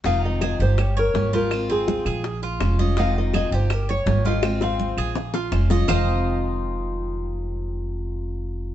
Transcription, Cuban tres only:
X:1
M:4/4
L:1/8
Q:1/4=164
K:Fm
V:1 name="Cuban tres"
E2 A G2 d2 F- | F C2 A2 F2 e | E2 A G2 d2 F- | F C2 A2 F2 e |
[Fce]8- | [Fce]8 |]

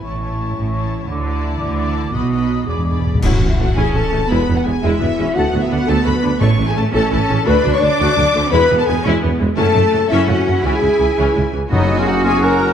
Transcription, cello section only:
X:1
M:6/8
L:1/16
Q:3/8=113
K:E
V:1 name="Cello section"
A,,6 A,,6 | =D,6 D,6 | B,,6 E,,6 | [K:A] z6 C6 |
B,6 G,2 B,2 C2 | B,12 | A,6 C6 | D12 |
B,6 C2 B,2 G,2 | A,6 C6 | E8- E z3 | [K:F#] F12 |]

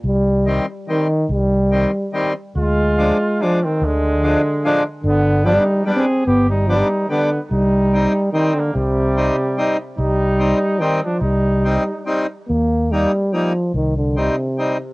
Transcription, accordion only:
X:1
M:3/4
L:1/8
Q:1/4=145
K:Cm
V:1 name="Accordion"
z2 [E,G,C] z [E,G,C] z | z2 [E,G,C] z [E,G,C] z | z2 [F,A,D] z [F,A,D] z | z2 [F,A,D] z [F,A,D] z |
z2 [G,=B,D] z [G,B,D] z | z2 [G,=B,D] z [G,B,D] z | z2 [G,CE] z [G,CE] z | z2 [G,CE] z [G,CE] z |
z2 [G,CE] z [G,CE] z | z2 [G,CE] z [G,CE] z | [K:Eb] z2 [G,B,E] z [G,B,E] z | z2 [G,CE] z [G,CE] z |]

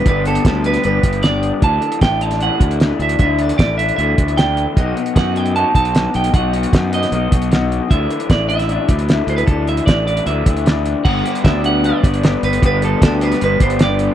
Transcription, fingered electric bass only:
X:1
M:4/4
L:1/8
Q:1/4=153
K:G
V:1 name="Fingered electric bass" clef=bass
G,,,2 D,,2 G,,, G,,,3 | D,, z A,,,3 D,,2 D,, | D,,2 A,,,2 D,, D,,3 | B,,, z F,,3 B,,,2 B,,, |
B,,,2 F,,2 B,,, B,,,3 | D,, z A,,,3 D,,2 D,, | D,,2 A,,,2 D,, D,,3 | G,,, z D,,3 G,,,2 G,,, |
G,,,2 D,,2 G,,, G,,,3 |]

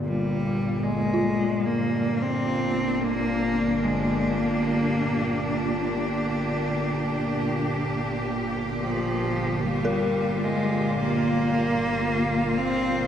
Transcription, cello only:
X:1
M:4/4
L:1/16
Q:1/4=55
K:Gphr
V:1 name="Cello"
G,3 A,3 B,2 C3 B,3 A,2 | B,6 z8 z2 | F,3 G,3 A,2 B,6 C2 |]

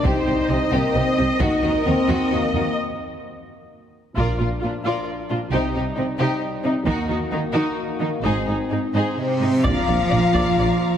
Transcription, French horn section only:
X:1
M:3/4
L:1/8
Q:1/4=132
K:Bbmix
V:1 name="French horn section"
E3 B, C2 | E2 C2 B,2 | z6 | [F,D]6 |
[G,E]6 | [B,_G]6 | [CE]4 C2 | F6 |]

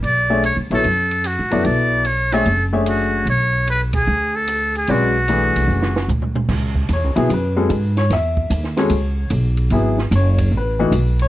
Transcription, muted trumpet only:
X:1
M:4/4
L:1/8
Q:"Swing" 1/4=149
K:C#phr
V:1 name="Muted trumpet"
d2 c A3 F2 | d2 c A2 z F2 | c2 B G2 A2 G | F6 z2 |
z8 | z8 | z8 |]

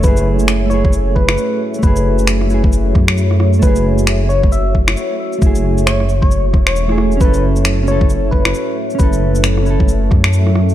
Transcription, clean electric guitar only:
X:1
M:4/4
L:1/16
Q:"Swing 16ths" 1/4=134
K:F#m
V:1 name="Clean electric guitar"
[A,EG]6 [A,EG]8- [A,EG]2 | [A,EG]6 [A,EG]8- [A,EG]2 | [A,EG]6 z8 z2 | [A,EG]6 z6 z [A,EG]3 |
[CEA]6 [CEA]8- [CEA]2 | [CEA]6 [CEA]8- [CEA]2 |]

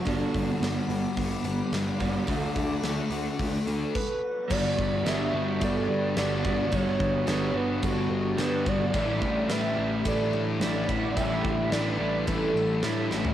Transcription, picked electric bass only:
X:1
M:4/4
L:1/8
Q:1/4=108
K:Glyd
V:1 name="Picked electric bass" clef=bass
G,,, G,,, G,,, G,,, G,,, G,,, G,,, G,,, | D,, D,, D,, D,, D,, D,, z2 | G,,, G,,, G,,, G,,, G,,, G,, G,,, G,,, | G,,, G,,, G,,, G,,, G,,, G,,, G,, G,,, |
A,,, A,,, A,,, A,,, A,,, A,, A,,, A,,, | A,,, A,,, A,,, A,,, A,,, A,,, A,, A,,, |]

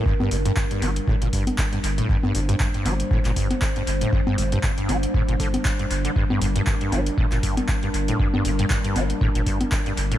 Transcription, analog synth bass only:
X:1
M:4/4
L:1/16
Q:"Swing 16ths" 1/4=118
K:Gm
V:1 name="Analog synth bass" clef=bass
z2 G,,, z3 G,,, z2 G,,, G,,, z3 G,,, z | z2 G,,, z3 G,,, z2 G,,, G,,, z3 G,,, z | z2 G,,, z3 G,,, z2 G,,, G,,, z3 G,,, z | z2 G,,, z3 G,,, z2 G,,, G,,, z3 G,,, z |
z2 G,,, z3 G,,, z2 G,,, G,,, z3 G,,, z |]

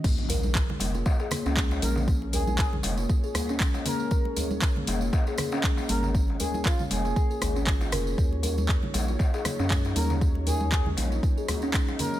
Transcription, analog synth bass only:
X:1
M:4/4
L:1/16
Q:"Swing 16ths" 1/4=118
K:Bbm
V:1 name="Analog synth bass" clef=bass
B,,,4- B,,, z F,,,2 z3 D,,3 B,,,2- | B,,,6 F,,,2 z8 | z6 F,,,2 z6 A,,,2- | A,,,2 z4 F,,,2 z2 A,,,4 F,,,2 |
E,,4- E,, z B,,,2 z3 G,,3 E,,2- | E,,6 B,,,2 z8 |]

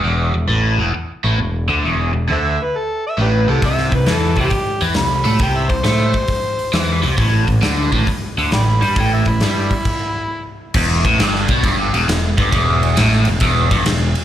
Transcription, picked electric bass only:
X:1
M:4/4
L:1/8
Q:"Swing" 1/4=135
K:Em
V:1 name="Picked electric bass" clef=bass
E,,, E,,, A,,, E,,, z A,,, E,,, D,, | E,,, E,,, D,, z3 A,,, C,, | C,, C,, E,, C,, z E,, C,, A,, | C,, C,, A,, z3 E,, C,, |
A,,, A,,, D,, A,,, z D,, A,,, G,, | A,,, A,,, G,, z4 z | E,,, A,,, G,,, B,,, G,,, E,,, E,,, G,,, | E,,,2 A,,, E,,, E,,, G,,, E,,, z |]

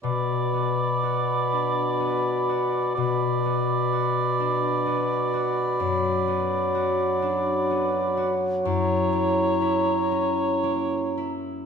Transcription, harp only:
X:1
M:3/4
L:1/8
Q:1/4=62
K:Bm
V:1 name="Harp"
B,, B, F D B, F | B,, B, F D B, F | F,, B, F D B, F | F,, ^A, E C A, E |]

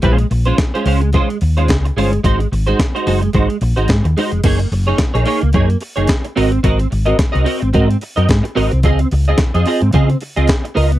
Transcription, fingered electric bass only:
X:1
M:4/4
L:1/16
Q:"Swing 16ths" 1/4=109
K:Abmix
V:1 name="Fingered electric bass" clef=bass
B,,,2 B,,,2 z2 D,,3 z E,,2 D,,2 =G,,,2 | A,,,2 A,,,2 z2 G,,,2 A,,, z B,,, A,,, A,, E,, z F,,, | G,,,2 G,,,2 z B,,, z D,, G,,2 z G,,, z2 A,,,2 | A,,,2 A,,,2 z C,, z A,,, A,,2 z G,, A,, z A,,, C,, |
D,,2 D,,2 z F,, z A,, D,2 z D,, z2 D,,2 |]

